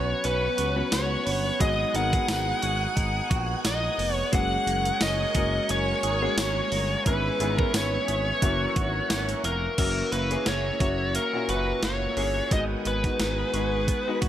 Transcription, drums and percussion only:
0.24 closed hi-hat
0.58 closed hi-hat
0.92 snare, closed hi-hat, tambourine
1.27 open hi-hat
1.60 kick, closed hi-hat
1.95 closed hi-hat
2.13 kick, closed hi-hat
2.28 snare, closed hi-hat, tambourine
2.62 closed hi-hat
2.97 kick, closed hi-hat
3.31 kick, closed hi-hat
3.65 snare, closed hi-hat, tambourine
3.99 open hi-hat
4.33 kick, closed hi-hat
4.67 closed hi-hat
4.85 closed hi-hat
5.01 snare, closed hi-hat, tambourine
5.35 kick, closed hi-hat
5.69 closed hi-hat
6.03 closed hi-hat
6.38 snare, closed hi-hat, tambourine
6.72 open hi-hat
7.06 kick, closed hi-hat
7.40 closed hi-hat
7.59 kick
7.74 snare, closed hi-hat, tambourine
8.08 closed hi-hat
8.42 kick, closed hi-hat
8.76 kick, closed hi-hat
9.10 snare, closed hi-hat, tambourine
9.29 closed hi-hat
9.44 closed hi-hat
9.78 kick, closed hi-hat, crash
10.12 closed hi-hat
10.31 closed hi-hat
10.46 snare, closed hi-hat, tambourine
10.80 kick, closed hi-hat
11.15 closed hi-hat
11.49 closed hi-hat
11.83 snare, closed hi-hat, tambourine
12.17 open hi-hat
12.51 kick, closed hi-hat
12.85 closed hi-hat
13.04 kick, closed hi-hat
13.20 snare, closed hi-hat, tambourine
13.54 closed hi-hat
13.88 kick, closed hi-hat
14.22 kick, closed hi-hat

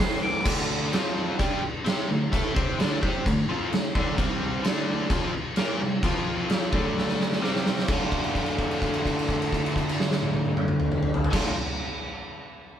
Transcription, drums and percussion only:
0.00 snare
0.46 kick, crash
0.93 snare, crash
1.39 kick, crash
1.86 snare, crash
2.33 kick, crash
2.56 kick
2.80 snare, crash
3.03 kick
3.26 kick, crash
3.73 snare, crash
3.95 kick
4.18 kick, crash
4.64 snare, crash
5.10 kick, crash
5.56 snare, crash
6.03 kick, crash
6.50 snare, crash
6.73 kick
6.98 snare
7.09 snare
7.21 snare
7.32 snare
7.44 snare
7.56 snare
7.66 snare
7.79 snare
7.88 kick, crash
8.12 kick, crash
8.24 crash
8.35 kick, crash
8.46 crash
8.59 kick, crash
8.71 crash
8.82 kick, crash
8.94 crash
9.05 kick, crash
9.19 crash
9.29 kick, crash
9.42 crash
9.52 kick, crash
9.66 crash
9.76 kick, crash
9.89 crash
10.00 snare
10.11 snare
10.23 high tom
10.34 high tom
10.46 high tom
10.57 mid tom
10.68 mid tom
10.80 mid tom
10.92 mid tom
11.03 mid tom
11.14 floor tom
11.24 floor tom
11.33 kick, snare, crash

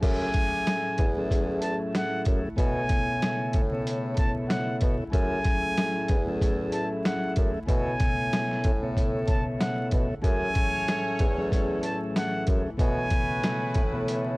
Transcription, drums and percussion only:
0.03 kick, closed hi-hat, crash
0.34 kick, closed hi-hat
0.67 snare, closed hi-hat
0.98 kick, closed hi-hat
1.31 kick, closed hi-hat
1.62 closed hi-hat
1.95 snare, closed hi-hat
2.25 kick, closed hi-hat
2.58 kick, closed hi-hat
2.89 kick, closed hi-hat
3.22 snare, closed hi-hat
3.53 kick, closed hi-hat
3.87 closed hi-hat
4.17 kick, closed hi-hat
4.50 snare, closed hi-hat
4.81 kick, closed hi-hat
5.13 kick, closed hi-hat
5.44 kick, closed hi-hat
5.77 snare, closed hi-hat
6.08 kick, closed hi-hat
6.41 kick, closed hi-hat
6.72 closed hi-hat
7.05 snare, closed hi-hat
7.36 kick, closed hi-hat
7.69 kick, closed hi-hat
8.00 kick, closed hi-hat
8.33 snare, closed hi-hat
8.51 snare
8.64 kick, closed hi-hat
8.97 kick, closed hi-hat
9.28 kick, closed hi-hat
9.61 snare, closed hi-hat
9.91 kick, closed hi-hat
10.24 kick, closed hi-hat
10.55 kick, closed hi-hat
10.88 snare, closed hi-hat
11.19 kick, closed hi-hat
11.52 kick, closed hi-hat
11.83 closed hi-hat
12.16 snare, closed hi-hat
12.47 kick, closed hi-hat
12.79 kick, closed hi-hat
13.10 kick, closed hi-hat
13.43 snare, closed hi-hat
13.74 kick, closed hi-hat
14.08 closed hi-hat

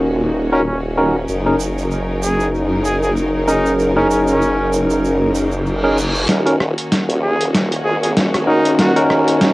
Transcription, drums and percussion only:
1.28 shaker
1.60 shaker
1.78 shaker
1.91 shaker
2.23 shaker
2.40 shaker
2.55 shaker
2.85 shaker
3.03 shaker
3.17 shaker
3.48 shaker
3.66 shaker
3.79 shaker
4.11 shaker
4.27 shaker
4.42 shaker
4.73 shaker
4.90 shaker
5.05 shaker
5.35 shaker
5.52 shaker
5.66 shaker
5.98 shaker
6.15 shaker
6.29 snare, closed hi-hat
6.47 closed hi-hat
6.60 cross-stick
6.78 closed hi-hat
6.92 snare, closed hi-hat
7.10 closed hi-hat
7.41 closed hi-hat
7.55 snare, closed hi-hat
7.72 closed hi-hat
8.03 closed hi-hat
8.17 snare, closed hi-hat
8.34 cross-stick, closed hi-hat
8.65 closed hi-hat
8.79 snare, closed hi-hat
8.96 closed hi-hat
9.10 cross-stick
9.28 closed hi-hat
9.41 snare, closed hi-hat

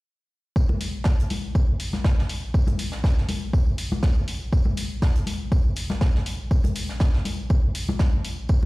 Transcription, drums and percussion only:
0.56 kick, tambourine
0.69 high conga
0.81 open hi-hat, tambourine
1.04 kick, snare, tambourine
1.19 closed hi-hat
1.30 open hi-hat, tambourine, high conga
1.55 kick, tambourine
1.80 open hi-hat, tambourine
1.93 snare, high conga
2.04 kick, snare, tambourine
2.19 snare
2.29 open hi-hat, tambourine
2.54 kick, tambourine
2.67 closed hi-hat, high conga
2.79 open hi-hat, tambourine
2.92 snare
3.04 kick, snare, tambourine
3.18 snare
3.29 open hi-hat, tambourine, high conga
3.53 kick, tambourine
3.78 open hi-hat, tambourine
3.92 high conga
4.03 kick, snare, tambourine
4.28 open hi-hat, tambourine
4.53 kick, tambourine
4.65 high conga
4.77 open hi-hat, tambourine
5.02 kick, snare, tambourine
5.15 closed hi-hat
5.27 open hi-hat, tambourine, high conga
5.52 kick, tambourine
5.76 open hi-hat, tambourine
5.90 snare, high conga
6.01 kick, snare, tambourine
6.15 snare
6.26 open hi-hat, tambourine
6.51 kick, tambourine
6.64 closed hi-hat, high conga
6.75 open hi-hat, tambourine
6.89 snare
7.00 kick, snare, tambourine
7.14 snare
7.25 open hi-hat, tambourine, high conga
7.50 kick, tambourine
7.75 open hi-hat, tambourine
7.89 high conga
7.99 kick, snare, tambourine
8.25 open hi-hat, tambourine
8.49 kick, tambourine

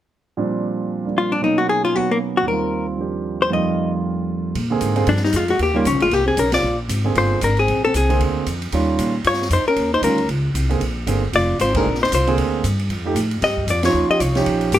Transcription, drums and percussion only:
4.55 ride
4.81 hi-hat pedal, ride
4.96 ride
5.07 ride
5.16 snare
5.24 snare
5.32 hi-hat pedal, ride
5.48 ride
5.59 ride
5.85 hi-hat pedal, ride
6.00 ride
6.11 ride
6.37 hi-hat pedal, ride
6.52 snare, ride
6.89 hi-hat pedal, ride
7.15 ride
7.41 hi-hat pedal, ride
7.57 ride
7.68 ride
7.94 hi-hat pedal, ride
8.10 ride
8.20 ride
8.46 hi-hat pedal, ride
8.62 ride
8.72 ride
8.99 hi-hat pedal, ride
9.24 ride
9.33 snare
9.42 snare
9.50 hi-hat pedal, ride
9.76 ride
10.03 hi-hat pedal, ride
10.18 ride
10.29 ride
10.55 hi-hat pedal, ride
10.70 ride
10.81 ride
11.07 hi-hat pedal, ride
11.33 ride
11.59 hi-hat pedal, ride
11.74 kick, ride
11.94 snare
12.03 snare
12.12 hi-hat pedal, ride
12.27 ride
12.38 ride
12.64 hi-hat pedal, ride
12.79 ride
12.90 ride
13.16 hi-hat pedal, ride
13.31 ride
13.42 snare, ride
13.57 kick
13.68 hi-hat pedal, ride
13.83 snare, ride
14.20 hi-hat pedal, ride
14.35 snare, ride
14.46 ride
14.61 ride
14.72 hi-hat pedal, ride

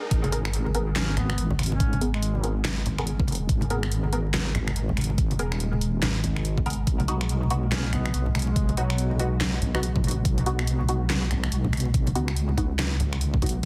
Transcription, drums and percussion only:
0.11 kick, closed hi-hat
0.24 closed hi-hat, high conga
0.32 closed hi-hat
0.45 finger snap
0.53 closed hi-hat
0.66 high conga
0.75 closed hi-hat
0.95 snare, clap, closed hi-hat, high conga
1.17 finger snap, closed hi-hat, muted conga, low conga
1.29 finger snap, high conga
1.38 closed hi-hat
1.50 low conga
1.59 finger snap, closed hi-hat, high conga
1.63 closed hi-hat
1.66 closed hi-hat
1.72 muted conga
1.80 kick, closed hi-hat
1.93 closed hi-hat, high conga
2.01 closed hi-hat
2.14 finger snap
2.22 closed hi-hat
2.35 high conga
2.44 closed hi-hat
2.65 snare, clap, closed hi-hat, high conga
2.86 closed hi-hat, low conga
2.98 finger snap, high conga
3.07 closed hi-hat
3.19 kick, low conga
3.27 closed hi-hat, high conga
3.32 closed hi-hat
3.35 closed hi-hat
3.49 kick, closed hi-hat
3.61 closed hi-hat, high conga
3.70 closed hi-hat
3.83 finger snap
3.92 closed hi-hat
4.04 high conga
4.13 closed hi-hat
4.34 snare, clap, closed hi-hat, high conga
4.55 finger snap, closed hi-hat, muted conga, low conga
4.67 finger snap, high conga
4.76 closed hi-hat
4.89 low conga
4.97 finger snap, closed hi-hat, high conga
5.01 closed hi-hat
5.04 closed hi-hat
5.10 muted conga
5.18 kick, closed hi-hat
5.31 closed hi-hat, high conga
5.39 closed hi-hat
5.52 finger snap
5.60 closed hi-hat
5.73 high conga
5.81 closed hi-hat
6.02 snare, clap, closed hi-hat, high conga
6.23 closed hi-hat, muted conga, low conga
6.36 finger snap, high conga
6.45 closed hi-hat
6.58 kick, low conga
6.66 closed hi-hat, high conga
6.70 closed hi-hat
6.73 closed hi-hat
6.87 kick, closed hi-hat
7.00 closed hi-hat, high conga
7.08 closed hi-hat
7.21 finger snap
7.29 closed hi-hat
7.43 high conga
7.50 closed hi-hat
7.71 snare, clap, closed hi-hat, high conga
7.93 finger snap, closed hi-hat, muted conga, low conga
8.06 finger snap, high conga
8.14 closed hi-hat
8.26 low conga
8.35 finger snap, closed hi-hat, high conga
8.39 closed hi-hat
8.42 closed hi-hat
8.47 muted conga
8.56 kick, closed hi-hat
8.69 closed hi-hat, high conga
8.77 closed hi-hat
8.90 finger snap
8.98 closed hi-hat
9.11 high conga
9.19 closed hi-hat
9.40 snare, clap, closed hi-hat, high conga
9.62 closed hi-hat, low conga
9.75 finger snap, high conga
9.83 closed hi-hat
9.96 kick, low conga
10.04 closed hi-hat, high conga
10.08 closed hi-hat
10.11 closed hi-hat
10.25 kick, closed hi-hat
10.38 closed hi-hat, high conga
10.46 closed hi-hat
10.59 finger snap
10.67 closed hi-hat
10.81 high conga
10.89 closed hi-hat
11.09 snare, clap, closed hi-hat, high conga
11.31 finger snap, closed hi-hat, muted conga, low conga
11.44 finger snap, high conga
11.52 closed hi-hat
11.64 low conga
11.73 finger snap, closed hi-hat, high conga
11.77 closed hi-hat
11.80 closed hi-hat
11.85 muted conga
11.94 kick, closed hi-hat
12.07 closed hi-hat, muted conga, high conga
12.15 closed hi-hat
12.28 finger snap
12.37 closed hi-hat
12.49 muted conga, high conga
12.58 kick, closed hi-hat
12.79 snare, clap, closed hi-hat, high conga
12.99 closed hi-hat, muted conga, low conga
13.13 finger snap, high conga
13.21 closed hi-hat
13.34 kick, low conga
13.42 kick, closed hi-hat, high conga
13.46 closed hi-hat
13.49 closed hi-hat

